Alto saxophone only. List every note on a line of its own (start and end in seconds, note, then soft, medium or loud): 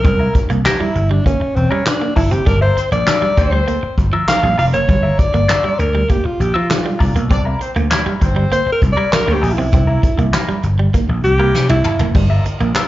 0.00 0.46 A#4 loud
0.65 0.82 G4 loud
0.80 1.12 E4 medium
1.11 1.25 D4 medium
1.25 1.57 C#4 medium
1.55 1.72 C4 medium
1.70 1.85 C#4 medium
1.86 2.14 D4 medium
2.16 2.33 E4 medium
2.31 2.48 G4 loud
2.47 2.61 A#4 loud
2.62 2.90 C5 loud
2.92 3.79 D5 loud
4.29 4.57 F5 loud
4.59 4.65 F5 loud
4.73 5.20 C#5 medium
5.19 5.81 D5 loud
5.79 6.11 A#4 medium
6.10 6.27 G4 medium
6.26 6.42 F4 medium
6.41 6.57 G4 medium
6.55 7.16 F4 medium
8.52 8.71 C5 loud
8.72 8.81 A#4 loud
8.92 9.14 D5 loud
9.13 9.35 A#4 loud
9.33 9.55 G4 loud
9.53 10.44 E4 medium
11.24 11.67 G4 loud
11.70 12.12 E4 loud